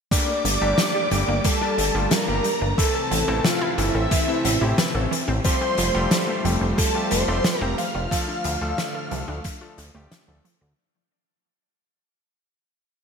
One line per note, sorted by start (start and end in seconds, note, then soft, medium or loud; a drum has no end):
0.11 2.75 G3 medium
0.11 0.57 G3 medium
0.11 0.27 G3 loud
0.11 0.57 A3 medium
0.11 0.57 A#3 medium
0.11 0.57 D4 medium
0.11 0.57 G4 medium
0.11 1.46 D5 loud
0.11 1.41 D6 loud
0.11 kick loud
0.11 closed hi-hat medium
0.28 0.36 A#3 medium
0.45 0.57 G1 loud
0.45 0.61 G3 medium
0.45 closed hi-hat medium
0.61 0.74 G1 medium
0.61 1.07 G3 medium
0.61 1.07 A3 medium
0.61 1.07 A#3 medium
0.61 1.07 D4 medium
0.61 0.74 D4 medium
0.61 1.07 G4 loud
0.78 0.91 G3 medium
0.78 snare loud
0.78 closed hi-hat loud
0.95 1.07 G4 medium
1.11 1.24 G1 medium
1.11 1.27 G3 loud
1.11 1.57 G3 medium
1.11 1.57 A3 medium
1.11 1.57 A#3 medium
1.11 1.57 D4 medium
1.11 1.57 G4 medium
1.11 closed hi-hat medium
1.28 1.40 G1 medium
1.28 1.41 A#3 loud
1.44 1.61 G3 loud
1.44 2.13 A4 loud
1.44 2.07 A5 loud
1.44 kick loud
1.44 closed hi-hat medium
1.61 1.91 G3 medium
1.61 1.91 A3 medium
1.61 1.91 A#3 medium
1.61 1.91 D4 medium
1.61 1.74 D4 loud
1.61 1.91 G4 medium
1.78 1.90 G1 medium
1.78 1.91 G3 loud
1.78 closed hi-hat medium
1.95 2.07 G1 medium
1.95 2.24 G3 medium
1.95 2.24 A3 medium
1.95 2.24 A#3 medium
1.95 2.24 D4 medium
1.95 2.24 F4 medium
1.95 2.07 G4 medium
2.11 2.27 G3 loud
2.11 2.80 A#4 loud
2.11 2.74 A#5 loud
2.11 snare loud
2.11 closed hi-hat loud
2.28 2.40 G1 medium
2.28 2.46 G3 medium
2.28 2.46 A3 medium
2.28 2.46 A#3 medium
2.28 2.36 A#3 medium
2.28 2.46 D4 medium
2.28 2.46 G4 medium
2.44 2.61 G3 medium
2.44 closed hi-hat medium
2.61 2.74 G1 medium
2.61 2.74 D4 medium
2.78 5.42 C3 medium
2.78 2.91 E3 loud
2.78 3.24 E3 medium
2.78 3.24 A3 medium
2.78 5.42 C4 medium
2.78 3.24 C4 medium
2.78 3.24 E4 medium
2.78 3.24 A4 medium
2.78 3.46 A4 loud
2.78 3.41 A5 loud
2.78 kick loud
2.78 closed hi-hat loud
2.95 3.07 A4 medium
3.11 3.24 A1 medium
3.11 3.27 E3 medium
3.11 closed hi-hat medium
3.28 3.40 A1 medium
3.28 3.74 E3 medium
3.28 3.74 A3 medium
3.28 3.41 C4 loud
3.28 3.74 C4 medium
3.28 3.74 E4 medium
3.28 3.74 A4 loud
3.45 3.60 E3 loud
3.45 3.80 F4 medium
3.45 3.76 F5 medium
3.45 snare loud
3.45 closed hi-hat loud
3.61 3.74 E4 loud
3.78 3.90 G1 medium
3.78 3.91 E3 loud
3.78 4.24 E3 medium
3.78 4.24 A3 medium
3.78 4.24 C4 medium
3.78 5.11 E4 medium
3.78 4.24 E4 medium
3.78 4.24 A4 medium
3.78 5.07 E5 medium
3.78 closed hi-hat medium
3.95 4.07 A1 medium
3.95 4.07 A4 medium
4.11 4.27 E3 loud
4.11 kick loud
4.11 closed hi-hat medium
4.28 4.57 E3 medium
4.28 4.57 A3 medium
4.28 4.36 C4 medium
4.28 4.57 C4 medium
4.28 4.57 E4 medium
4.28 4.57 A4 medium
4.45 4.57 A1 medium
4.45 4.60 E3 medium
4.45 closed hi-hat medium
4.61 4.74 A1 medium
4.61 4.91 E3 medium
4.61 4.91 A3 medium
4.61 4.91 C4 medium
4.61 4.74 E4 medium
4.61 4.91 E4 medium
4.61 4.91 G4 medium
4.78 4.91 E3 loud
4.78 snare loud
4.78 closed hi-hat loud
4.95 5.07 A1 medium
4.95 5.13 E3 medium
4.95 5.13 A3 medium
4.95 5.13 C4 medium
4.95 5.13 E4 medium
4.95 5.07 A4 medium
4.95 5.13 A4 medium
5.11 5.27 E3 medium
5.11 closed hi-hat medium
5.28 5.40 A1 medium
5.28 5.41 C4 loud
5.44 10.74 F3 medium
5.44 5.61 F3 medium
5.44 8.09 G3 medium
5.44 5.91 G3 medium
5.44 8.09 A3 medium
5.44 5.91 A3 medium
5.44 5.91 C4 medium
5.44 5.91 F4 medium
5.44 5.91 G4 medium
5.44 6.41 C5 loud
5.44 6.41 C6 loud
5.44 kick loud
5.44 closed hi-hat medium
5.61 5.74 C4 loud
5.78 5.90 F1 medium
5.78 5.91 F3 loud
5.78 closed hi-hat medium
5.95 6.07 F1 medium
5.95 6.41 G3 medium
5.95 6.41 A3 medium
5.95 6.41 C4 medium
5.95 6.07 F4 medium
5.95 6.41 F4 medium
5.95 6.41 G4 loud
6.11 6.27 F3 loud
6.11 snare loud
6.11 closed hi-hat loud
6.28 6.36 A3 medium
6.45 6.57 F1 medium
6.45 6.61 F3 medium
6.45 6.91 G3 medium
6.45 6.91 A3 medium
6.45 6.91 C4 medium
6.45 6.91 F4 medium
6.45 6.91 G4 medium
6.45 closed hi-hat medium
6.61 6.74 F1 medium
6.61 6.74 C4 medium
6.78 6.91 F3 loud
6.78 7.09 A4 medium
6.78 7.09 A5 medium
6.78 kick loud
6.78 closed hi-hat loud
6.95 7.24 G3 medium
6.95 7.24 A3 medium
6.95 7.24 C4 medium
6.95 7.07 F4 medium
6.95 7.24 F4 medium
6.95 7.24 G4 medium
7.11 7.24 F1 medium
7.11 7.27 F3 loud
7.11 7.58 C5 loud
7.11 7.58 C6 loud
7.11 closed hi-hat medium
7.28 7.40 F1 medium
7.28 7.57 G3 medium
7.28 7.41 A3 loud
7.28 7.57 A3 medium
7.28 7.57 C4 medium
7.28 7.57 F4 medium
7.28 7.57 G4 medium
7.44 7.60 F3 loud
7.44 snare loud
7.44 closed hi-hat loud
7.58 7.74 F1 medium
7.58 7.80 G3 medium
7.58 7.80 A3 medium
7.58 7.74 C4 loud
7.58 7.80 C4 medium
7.58 7.80 F4 medium
7.58 7.80 G4 medium
7.58 7.74 A#4 loud
7.58 7.74 A#5 loud
7.78 7.91 F3 loud
7.78 10.07 F5 loud
7.78 10.07 F6 loud
7.78 closed hi-hat medium
7.95 8.07 F1 medium
7.95 8.07 F4 medium
8.11 10.75 D3 medium
8.11 8.27 F3 loud
8.11 8.57 F3 medium
8.11 10.75 A3 medium
8.11 8.57 A3 medium
8.11 8.57 D4 medium
8.11 8.57 F4 medium
8.11 8.57 A4 medium
8.11 kick loud
8.11 closed hi-hat medium
8.28 8.36 D4 medium
8.44 8.57 D2 loud
8.44 8.60 F3 medium
8.44 closed hi-hat medium
8.61 8.74 D2 medium
8.61 9.07 F3 medium
8.61 9.07 A3 medium
8.61 9.07 D4 medium
8.61 8.74 F4 medium
8.61 9.07 F4 medium
8.61 9.07 A4 loud
8.78 8.91 F3 loud
8.78 snare loud
8.78 closed hi-hat loud
8.95 9.07 A4 medium
9.11 9.24 C2 medium
9.11 9.27 F3 loud
9.11 9.57 F3 medium
9.11 9.57 A3 medium
9.11 9.57 D4 medium
9.11 9.57 F4 medium
9.11 9.57 A4 medium
9.11 closed hi-hat medium
9.28 9.40 D2 medium
9.28 9.41 D4 loud
9.44 9.61 F3 loud
9.44 kick loud
9.44 closed hi-hat medium
9.61 9.91 F3 medium
9.61 9.91 A3 medium
9.61 9.91 D4 medium
9.61 9.74 F4 loud
9.61 9.91 F4 medium
9.61 9.91 A4 medium
9.78 9.90 D2 medium
9.78 9.91 D4 medium
9.78 closed hi-hat medium
9.95 10.07 D2 medium
9.95 10.24 F3 medium
9.95 10.02 A3 loud
9.95 10.24 A3 medium
9.95 10.24 D4 medium
9.95 10.24 F4 medium
9.95 10.24 G4 medium
10.11 10.27 F3 medium
10.11 snare loud
10.11 closed hi-hat loud
10.28 10.40 D2 medium
10.28 10.43 F3 medium
10.28 10.46 F3 medium
10.28 10.46 A3 medium
10.28 10.46 D4 medium
10.28 10.46 F4 medium
10.28 10.46 A4 medium
10.45 10.61 F3 loud
10.45 closed hi-hat medium
10.61 10.74 D2 medium
10.61 10.74 D5 medium